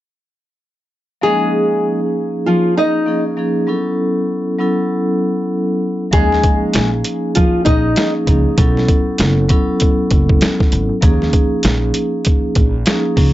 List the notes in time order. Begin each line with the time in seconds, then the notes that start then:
1.21 F3 G#3 A#3 C#4 D#4 G#4
2.46 F3 F4
2.77 D#4 D#5
3.06 F3 A#3 C#4 D#4 G#4
3.36 F3 A#3 C#4 D#4 G#4
3.67 F#3 B3 C#4 E4 A4
4.59 F#3 B3 C#4 E4 A4
6.11 D#2 F3 G#3 A#3 C#4 D#4 G#4, kick, closed hi-hat
6.32 snare
6.44 kick, closed hi-hat
6.74 A#1, snare, closed hi-hat
7.04 closed hi-hat
7.35 F3 F4, kick, closed hi-hat
7.65 A#1 D#4 D#5, kick, closed hi-hat
7.96 F3 A#3 C#4 D#4 G#4, snare, closed hi-hat
8.26 C#2 F3 A#3 C#4 D#4 G#4, kick, closed hi-hat
8.57 B1 F#3 B3 C#4 E4 A4, kick, closed hi-hat
8.77 snare
8.88 kick, closed hi-hat
9.18 F#1, snare, closed hi-hat
9.48 F#3 B3 C#4 E4 A4, kick, closed hi-hat
9.80 kick, closed hi-hat
10.11 F#1, kick, closed hi-hat
10.29 kick
10.41 snare, closed hi-hat
10.60 kick, snare
10.72 G#1, closed hi-hat
11.01 D#2 F3 A#3 C#4 D#4 G#4, kick, closed hi-hat
11.22 snare
11.33 kick, closed hi-hat
11.63 A#1, snare, closed hi-hat
11.94 closed hi-hat
12.25 kick, closed hi-hat
12.55 A#1, kick, closed hi-hat
12.85 F3 A#3 C#4 D#4 G#4, snare, closed hi-hat
13.16 C#2 F3 A#3 C#4 D#4 G#4, kick, open hi-hat